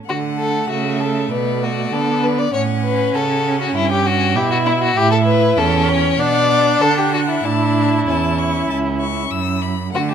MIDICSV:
0, 0, Header, 1, 5, 480
1, 0, Start_track
1, 0, Tempo, 611621
1, 64, Time_signature, 4, 2, 24, 8
1, 4862, Tempo, 624350
1, 7898, End_track
2, 0, Start_track
2, 0, Title_t, "Violin"
2, 0, Program_c, 0, 40
2, 63, Note_on_c, 0, 78, 39
2, 544, Note_on_c, 0, 76, 45
2, 555, Note_off_c, 0, 78, 0
2, 1027, Note_on_c, 0, 74, 49
2, 1038, Note_off_c, 0, 76, 0
2, 1981, Note_off_c, 0, 74, 0
2, 1986, Note_on_c, 0, 78, 44
2, 2456, Note_off_c, 0, 78, 0
2, 2468, Note_on_c, 0, 78, 43
2, 2951, Note_on_c, 0, 79, 48
2, 2962, Note_off_c, 0, 78, 0
2, 3423, Note_on_c, 0, 76, 57
2, 3435, Note_off_c, 0, 79, 0
2, 3892, Note_off_c, 0, 76, 0
2, 3897, Note_on_c, 0, 76, 51
2, 4370, Note_off_c, 0, 76, 0
2, 4380, Note_on_c, 0, 79, 52
2, 4858, Note_on_c, 0, 78, 63
2, 4870, Note_off_c, 0, 79, 0
2, 5098, Note_off_c, 0, 78, 0
2, 5104, Note_on_c, 0, 78, 53
2, 5821, Note_on_c, 0, 81, 46
2, 5833, Note_off_c, 0, 78, 0
2, 6255, Note_off_c, 0, 81, 0
2, 6298, Note_on_c, 0, 81, 45
2, 6544, Note_on_c, 0, 85, 51
2, 6555, Note_off_c, 0, 81, 0
2, 6783, Note_off_c, 0, 85, 0
2, 6787, Note_on_c, 0, 81, 43
2, 6849, Note_off_c, 0, 81, 0
2, 7024, Note_on_c, 0, 85, 47
2, 7253, Note_on_c, 0, 88, 52
2, 7264, Note_off_c, 0, 85, 0
2, 7495, Note_on_c, 0, 83, 44
2, 7507, Note_off_c, 0, 88, 0
2, 7724, Note_off_c, 0, 83, 0
2, 7728, Note_on_c, 0, 78, 44
2, 7854, Note_on_c, 0, 81, 39
2, 7865, Note_off_c, 0, 78, 0
2, 7898, Note_off_c, 0, 81, 0
2, 7898, End_track
3, 0, Start_track
3, 0, Title_t, "Violin"
3, 0, Program_c, 1, 40
3, 71, Note_on_c, 1, 66, 62
3, 134, Note_off_c, 1, 66, 0
3, 308, Note_on_c, 1, 69, 59
3, 540, Note_off_c, 1, 69, 0
3, 545, Note_on_c, 1, 66, 52
3, 787, Note_on_c, 1, 69, 53
3, 799, Note_off_c, 1, 66, 0
3, 1027, Note_off_c, 1, 69, 0
3, 1032, Note_on_c, 1, 71, 62
3, 1275, Note_on_c, 1, 66, 57
3, 1287, Note_off_c, 1, 71, 0
3, 1516, Note_on_c, 1, 69, 67
3, 1527, Note_off_c, 1, 66, 0
3, 1754, Note_on_c, 1, 71, 54
3, 1765, Note_off_c, 1, 69, 0
3, 1873, Note_on_c, 1, 74, 58
3, 1884, Note_off_c, 1, 71, 0
3, 1982, Note_off_c, 1, 74, 0
3, 1987, Note_on_c, 1, 73, 71
3, 2050, Note_off_c, 1, 73, 0
3, 2232, Note_on_c, 1, 71, 64
3, 2471, Note_on_c, 1, 69, 65
3, 2483, Note_off_c, 1, 71, 0
3, 2827, Note_off_c, 1, 69, 0
3, 2834, Note_on_c, 1, 66, 54
3, 2941, Note_off_c, 1, 66, 0
3, 2946, Note_on_c, 1, 64, 72
3, 3062, Note_off_c, 1, 64, 0
3, 3071, Note_on_c, 1, 67, 66
3, 3190, Note_on_c, 1, 66, 76
3, 3201, Note_off_c, 1, 67, 0
3, 3419, Note_on_c, 1, 67, 71
3, 3431, Note_off_c, 1, 66, 0
3, 3536, Note_off_c, 1, 67, 0
3, 3541, Note_on_c, 1, 66, 71
3, 3589, Note_off_c, 1, 66, 0
3, 3657, Note_on_c, 1, 64, 76
3, 3706, Note_off_c, 1, 64, 0
3, 3782, Note_on_c, 1, 66, 77
3, 3897, Note_on_c, 1, 67, 90
3, 3909, Note_off_c, 1, 66, 0
3, 4008, Note_off_c, 1, 67, 0
3, 4013, Note_on_c, 1, 69, 62
3, 4063, Note_off_c, 1, 69, 0
3, 4123, Note_on_c, 1, 71, 78
3, 4373, Note_on_c, 1, 69, 70
3, 4384, Note_off_c, 1, 71, 0
3, 4619, Note_on_c, 1, 73, 72
3, 4630, Note_off_c, 1, 69, 0
3, 4865, Note_on_c, 1, 74, 90
3, 4877, Note_off_c, 1, 73, 0
3, 5340, Note_on_c, 1, 69, 81
3, 5351, Note_off_c, 1, 74, 0
3, 5462, Note_on_c, 1, 67, 64
3, 5473, Note_off_c, 1, 69, 0
3, 5581, Note_off_c, 1, 67, 0
3, 5585, Note_on_c, 1, 66, 70
3, 5632, Note_off_c, 1, 66, 0
3, 5702, Note_on_c, 1, 64, 58
3, 5830, Note_on_c, 1, 62, 75
3, 5841, Note_off_c, 1, 64, 0
3, 6308, Note_on_c, 1, 61, 51
3, 6319, Note_off_c, 1, 62, 0
3, 7508, Note_off_c, 1, 61, 0
3, 7749, Note_on_c, 1, 66, 70
3, 7796, Note_off_c, 1, 66, 0
3, 7868, Note_on_c, 1, 67, 50
3, 7898, Note_off_c, 1, 67, 0
3, 7898, End_track
4, 0, Start_track
4, 0, Title_t, "Viola"
4, 0, Program_c, 2, 41
4, 74, Note_on_c, 2, 57, 44
4, 1519, Note_on_c, 2, 59, 48
4, 1531, Note_off_c, 2, 57, 0
4, 1989, Note_off_c, 2, 59, 0
4, 1994, Note_on_c, 2, 61, 53
4, 3423, Note_on_c, 2, 64, 67
4, 3435, Note_off_c, 2, 61, 0
4, 3889, Note_off_c, 2, 64, 0
4, 3893, Note_on_c, 2, 64, 62
4, 4377, Note_on_c, 2, 61, 75
4, 4389, Note_off_c, 2, 64, 0
4, 4863, Note_on_c, 2, 62, 63
4, 4875, Note_off_c, 2, 61, 0
4, 5811, Note_on_c, 2, 64, 57
4, 5823, Note_off_c, 2, 62, 0
4, 7501, Note_off_c, 2, 64, 0
4, 7736, Note_on_c, 2, 57, 57
4, 7898, Note_off_c, 2, 57, 0
4, 7898, End_track
5, 0, Start_track
5, 0, Title_t, "Cello"
5, 0, Program_c, 3, 42
5, 67, Note_on_c, 3, 50, 43
5, 519, Note_off_c, 3, 50, 0
5, 550, Note_on_c, 3, 49, 47
5, 1024, Note_off_c, 3, 49, 0
5, 1034, Note_on_c, 3, 47, 49
5, 1504, Note_off_c, 3, 47, 0
5, 1514, Note_on_c, 3, 50, 46
5, 1983, Note_off_c, 3, 50, 0
5, 1994, Note_on_c, 3, 45, 47
5, 2461, Note_off_c, 3, 45, 0
5, 2468, Note_on_c, 3, 49, 51
5, 2935, Note_off_c, 3, 49, 0
5, 2947, Note_on_c, 3, 43, 55
5, 3417, Note_on_c, 3, 47, 60
5, 3429, Note_off_c, 3, 43, 0
5, 3894, Note_off_c, 3, 47, 0
5, 3899, Note_on_c, 3, 45, 62
5, 4371, Note_off_c, 3, 45, 0
5, 4379, Note_on_c, 3, 40, 60
5, 4853, Note_off_c, 3, 40, 0
5, 4861, Note_on_c, 3, 47, 61
5, 5329, Note_off_c, 3, 47, 0
5, 5340, Note_on_c, 3, 50, 54
5, 5811, Note_off_c, 3, 50, 0
5, 5821, Note_on_c, 3, 45, 48
5, 6293, Note_off_c, 3, 45, 0
5, 6301, Note_on_c, 3, 40, 48
5, 6775, Note_off_c, 3, 40, 0
5, 6785, Note_on_c, 3, 37, 49
5, 7255, Note_off_c, 3, 37, 0
5, 7266, Note_on_c, 3, 42, 49
5, 7736, Note_off_c, 3, 42, 0
5, 7743, Note_on_c, 3, 50, 50
5, 7898, Note_off_c, 3, 50, 0
5, 7898, End_track
0, 0, End_of_file